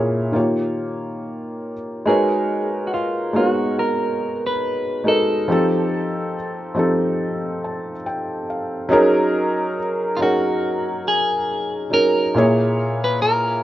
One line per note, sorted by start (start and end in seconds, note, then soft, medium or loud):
0.00 0.37 A#2 medium
0.00 0.33 A#3 medium
0.00 0.37 E4 medium
0.00 0.36 G#4 medium
0.00 1.60 A#4 medium
0.00 0.36 C#5 loud
0.32 1.72 D#3 medium
0.32 1.72 A#3 medium
0.32 1.73 F4 medium
0.32 1.73 G4 medium
0.32 1.74 C#5 medium
2.06 2.91 G#3 loud
2.06 2.91 D#4 medium
2.06 2.92 F#4 medium
2.06 2.83 G#4 medium
2.06 2.92 A#4 medium
2.06 2.93 B4 medium
2.06 2.93 C#5 loud
2.87 2.93 F#4 soft
2.94 3.36 F4 medium
3.33 4.50 G#3 medium
3.33 4.51 B3 medium
3.33 4.50 D#4 medium
3.33 3.47 F4 medium
3.33 4.51 F#4 medium
3.33 4.51 A#4 medium
3.37 4.52 C#5 medium
3.47 3.79 F#4 medium
3.79 4.46 A#4 medium
4.47 5.03 B4 medium
5.04 5.36 G#3 medium
5.04 5.36 D#4 medium
5.04 5.37 F#4 medium
5.04 5.37 A#4 medium
5.04 5.38 B4 medium
5.08 8.03 A4 medium
5.08 5.38 D#5 medium
5.48 6.34 F3 medium
5.48 6.34 C4 medium
5.48 6.35 D#4 medium
5.48 6.35 G4 medium
5.52 6.36 A4 loud
6.75 7.92 F3 medium
6.75 7.92 C4 medium
6.75 7.93 D#4 medium
6.75 7.93 G4 medium
6.79 7.94 A4 medium
7.64 8.04 A5 medium
8.06 8.46 G5 medium
8.50 8.89 F5 medium
8.89 9.76 F#3 loud
8.89 9.76 C#4 loud
8.89 9.76 D#4 loud
8.89 9.77 G#4 loud
8.89 9.78 A#4 loud
10.17 11.35 F#3 medium
10.17 11.36 C#4 medium
10.17 10.22 F4 medium
10.21 11.37 D#4 medium
10.21 11.03 F#4 medium
10.21 11.37 G#4 medium
10.21 11.37 A#4 medium
11.08 11.93 G#4 medium
11.90 12.22 F#3 medium
11.90 12.22 C#4 medium
11.90 12.22 D#4 medium
11.90 12.23 G#4 medium
11.90 13.04 A#4 loud
11.90 12.24 A#4 medium
12.34 13.20 A#2 medium
12.34 13.20 A#3 medium
12.34 13.21 E4 medium
12.34 13.22 G#4 medium
12.34 13.22 C#5 loud
13.04 13.22 B4 medium
13.22 13.63 A#4 medium